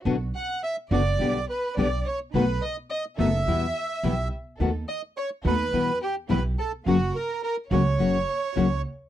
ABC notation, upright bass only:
X:1
M:4/4
L:1/8
Q:1/4=106
K:Bm
V:1 name="Upright bass" clef=bass
B,,, z2 F,,, B,,, z B,,, z | B,,, z2 F,,, E,, z B,,, z | ^D,, z2 D,, E,, z B,,, z | F,,, z2 C,, F,,, z C,, z |]